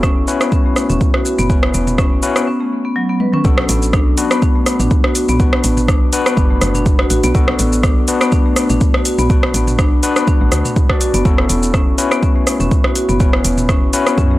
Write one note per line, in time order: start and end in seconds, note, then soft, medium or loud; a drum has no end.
0.00 0.18 E1 medium
0.00 0.25 C#4 medium
0.00 0.15 C#4 loud
0.00 0.25 E4 medium
0.00 0.25 F#4 medium
0.00 0.25 A4 medium
0.00 kick loud
0.00 cross-stick medium
0.00 shaker soft
0.17 0.25 F#1 medium
0.28 1.47 C#4 medium
0.28 1.47 E4 medium
0.28 1.47 F#4 medium
0.28 1.47 B4 loud
0.28 shaker medium
0.41 0.52 B3 loud
0.41 cross-stick medium
0.41 shaker soft
0.52 0.64 C#4 medium
0.52 kick loud
0.52 shaker soft
0.66 0.76 A3 medium
0.76 cross-stick medium
0.76 shaker medium
0.90 0.99 E1 medium
0.90 0.96 C#4 medium
0.90 mid tom medium
0.90 shaker soft
1.01 kick loud
1.01 shaker soft
1.14 1.24 F#4 medium
1.14 cross-stick medium
1.25 1.32 F#4 medium
1.25 shaker medium
1.39 1.70 F#1 medium
1.39 1.48 B3 loud
1.39 mid tom medium
1.39 shaker medium
1.50 2.20 C#4 medium
1.50 2.20 E4 medium
1.50 2.20 F#4 medium
1.50 2.20 B4 medium
1.50 kick loud
1.50 shaker soft
1.63 cross-stick loud
1.74 2.13 E1 medium
1.74 1.81 B3 medium
1.74 shaker medium
1.87 mid tom medium
1.87 shaker medium
1.98 2.10 C#4 loud
1.98 kick loud
1.98 cross-stick medium
1.98 shaker soft
2.12 2.20 F#1 medium
2.23 2.47 C#4 loud
2.23 2.47 E4 medium
2.23 2.47 F#4 medium
2.23 2.47 B4 loud
2.23 shaker medium
2.36 2.47 B3 loud
2.36 cross-stick medium
2.36 shaker medium
2.47 2.59 C#4 medium
2.60 2.70 A3 medium
2.85 2.95 B3 medium
2.96 3.03 F#3 loud
3.09 3.19 B3 medium
3.20 3.27 B4 medium
3.20 high tom medium
3.33 3.44 C#4 loud
3.33 mid tom medium
3.44 3.64 B1 medium
3.44 3.56 B3 medium
3.44 4.15 B3 medium
3.44 4.15 D4 medium
3.44 4.15 F#4 medium
3.44 4.15 A4 medium
3.44 kick loud
3.44 shaker soft
3.58 cross-stick loud
3.69 4.08 A1 medium
3.69 3.76 B3 medium
3.69 open hi-hat medium
3.69 shaker medium
3.82 shaker medium
3.93 4.05 D4 loud
3.93 kick loud
3.93 cross-stick medium
3.93 shaker soft
4.07 4.16 B1 loud
4.17 5.37 B3 medium
4.17 5.37 D4 medium
4.17 5.37 F#4 medium
4.17 5.37 B4 loud
4.17 open hi-hat medium
4.17 shaker loud
4.31 4.42 B3 medium
4.31 cross-stick loud
4.31 shaker medium
4.42 4.54 D4 medium
4.42 kick loud
4.42 shaker soft
4.56 4.65 A3 medium
4.66 cross-stick medium
4.66 open hi-hat loud
4.66 shaker medium
4.80 4.89 A1 medium
4.80 4.86 D4 medium
4.80 mid tom medium
4.80 shaker medium
4.91 kick loud
4.91 shaker soft
5.04 5.14 F#4 medium
5.04 cross-stick medium
5.15 5.23 F#4 medium
5.15 open hi-hat loud
5.15 shaker loud
5.28 5.60 B1 medium
5.28 5.39 B3 loud
5.28 mid tom medium
5.28 shaker medium
5.40 6.10 B3 medium
5.40 5.52 B3 medium
5.40 6.10 D4 medium
5.40 6.10 F#4 medium
5.40 6.10 B4 medium
5.40 kick loud
5.40 shaker soft
5.53 cross-stick loud
5.64 6.03 A1 medium
5.64 5.71 B3 medium
5.64 open hi-hat medium
5.64 shaker medium
5.77 mid tom medium
5.77 shaker medium
5.88 6.00 D4 loud
5.88 kick loud
5.88 cross-stick medium
5.88 shaker soft
6.02 6.11 B1 medium
6.13 7.32 B3 loud
6.13 7.32 D4 medium
6.13 7.32 F#4 medium
6.13 7.32 B4 loud
6.13 open hi-hat medium
6.13 shaker loud
6.26 6.37 B3 loud
6.26 cross-stick loud
6.26 shaker medium
6.37 6.57 F#1 loud
6.37 6.49 D4 medium
6.37 kick loud
6.37 shaker soft
6.50 6.60 A3 medium
6.61 7.07 F#1 loud
6.61 cross-stick medium
6.61 open hi-hat medium
6.61 shaker loud
6.75 6.81 D4 medium
6.75 mid tom medium
6.75 shaker medium
6.86 kick loud
6.86 shaker soft
6.99 7.09 F#4 medium
6.99 cross-stick medium
7.10 7.21 A1 medium
7.10 7.17 F#4 medium
7.10 open hi-hat medium
7.10 shaker loud
7.24 7.33 B1 loud
7.24 7.34 B3 loud
7.24 open hi-hat medium
7.24 shaker medium
7.35 7.55 B1 loud
7.35 8.05 B3 medium
7.35 7.47 B3 medium
7.35 8.05 D4 medium
7.35 8.05 F#4 medium
7.35 8.05 A4 loud
7.35 kick loud
7.35 shaker soft
7.48 cross-stick loud
7.59 7.98 A1 medium
7.59 7.66 B3 medium
7.59 open hi-hat medium
7.59 shaker medium
7.72 shaker medium
7.83 7.95 D4 loud
7.83 kick loud
7.83 cross-stick medium
7.83 shaker soft
7.97 8.06 B1 medium
8.08 9.27 B3 medium
8.08 9.27 D4 medium
8.08 9.27 F#4 medium
8.08 9.27 B4 loud
8.08 open hi-hat medium
8.08 shaker loud
8.21 8.32 B3 loud
8.21 cross-stick loud
8.21 shaker medium
8.32 8.44 D4 medium
8.32 kick loud
8.32 shaker soft
8.46 8.56 A3 medium
8.56 cross-stick medium
8.56 open hi-hat medium
8.56 shaker loud
8.70 8.79 A1 medium
8.70 8.76 D4 medium
8.70 mid tom medium
8.70 shaker medium
8.81 kick loud
8.81 shaker soft
8.94 9.04 F#4 medium
8.94 cross-stick medium
9.05 9.13 F#4 medium
9.05 open hi-hat medium
9.05 shaker loud
9.18 9.51 B1 medium
9.18 9.29 B3 loud
9.18 mid tom medium
9.18 shaker medium
9.30 10.00 B3 medium
9.30 9.42 B3 medium
9.30 10.00 D4 medium
9.30 10.00 F#4 medium
9.30 10.00 B4 medium
9.30 kick loud
9.30 shaker soft
9.43 cross-stick loud
9.54 9.93 A1 medium
9.54 9.62 B3 medium
9.54 open hi-hat medium
9.54 shaker medium
9.67 mid tom medium
9.67 shaker medium
9.79 9.91 D4 loud
9.79 kick loud
9.79 cross-stick medium
9.79 shaker soft
9.92 10.01 B1 medium
10.03 10.87 B3 loud
10.03 10.87 D4 medium
10.03 10.87 F#4 medium
10.03 10.87 B4 loud
10.03 open hi-hat medium
10.03 shaker loud
10.16 10.27 B3 loud
10.16 cross-stick medium
10.16 shaker medium
10.27 10.40 D4 medium
10.27 kick loud
10.27 shaker soft
10.41 10.50 A1 loud
10.41 10.51 A3 medium
10.52 10.62 D2 loud
10.52 cross-stick medium
10.52 open hi-hat medium
10.52 shaker loud
10.65 10.71 D4 medium
10.65 mid tom loud
10.65 shaker medium
10.76 kick loud
10.76 shaker soft
10.90 11.22 B3 medium
10.90 11.23 D4 medium
10.90 11.00 F#4 medium
10.90 11.23 F#4 medium
10.90 11.23 D5 medium
10.90 kick medium
10.90 cross-stick medium
11.01 11.08 F#4 medium
11.01 open hi-hat medium
11.01 shaker loud
11.14 11.23 F#1 medium
11.14 11.24 B3 loud
11.14 open hi-hat soft
11.14 shaker medium
11.25 11.45 F#1 loud
11.25 11.37 B3 medium
11.25 11.96 C#4 medium
11.25 11.96 E4 medium
11.25 11.96 F#4 medium
11.25 11.96 A4 loud
11.25 kick loud
11.25 shaker soft
11.38 cross-stick medium
11.49 11.89 E1 medium
11.49 11.57 B3 medium
11.49 open hi-hat medium
11.49 shaker medium
11.63 shaker medium
11.74 11.86 C#4 loud
11.74 kick loud
11.74 cross-stick medium
11.74 shaker soft
11.87 11.96 F#1 medium
11.98 13.18 C#4 medium
11.98 13.17 E4 medium
11.98 13.17 F#4 medium
11.98 13.18 B4 loud
11.98 open hi-hat medium
11.98 shaker medium
12.11 12.22 B3 loud
12.11 cross-stick medium
12.11 shaker medium
12.23 12.35 C#4 medium
12.23 kick loud
12.23 shaker soft
12.36 12.46 A3 medium
12.47 cross-stick medium
12.47 open hi-hat medium
12.47 shaker loud
12.60 12.69 E1 medium
12.60 12.66 C#4 medium
12.60 mid tom loud
12.60 shaker medium
12.71 kick loud
12.71 shaker soft
12.84 12.95 F#4 medium
12.84 cross-stick medium
12.95 13.03 F#4 medium
12.95 open hi-hat medium
12.95 shaker medium
13.09 13.41 F#1 medium
13.09 13.19 B3 loud
13.09 mid tom medium
13.09 shaker soft
13.20 13.32 B3 medium
13.20 13.91 C#4 medium
13.20 13.91 E4 medium
13.20 13.91 F#4 medium
13.20 13.91 B4 medium
13.20 kick loud
13.20 shaker soft
13.33 cross-stick medium
13.44 13.84 E1 medium
13.44 13.52 B3 medium
13.44 open hi-hat medium
13.44 shaker medium
13.58 mid tom loud
13.58 shaker medium
13.69 13.81 C#4 loud
13.69 kick loud
13.69 cross-stick medium
13.69 shaker soft
13.82 13.91 F#1 medium
13.93 14.39 C#4 loud
13.93 14.39 E4 medium
13.93 14.39 F#4 medium
13.93 14.39 B4 loud
13.93 open hi-hat medium
13.93 shaker medium
14.07 14.17 B3 loud
14.07 cross-stick medium
14.07 shaker medium
14.18 14.38 F#2 loud
14.18 14.30 C#4 medium
14.18 kick loud
14.18 shaker soft
14.31 14.39 A3 medium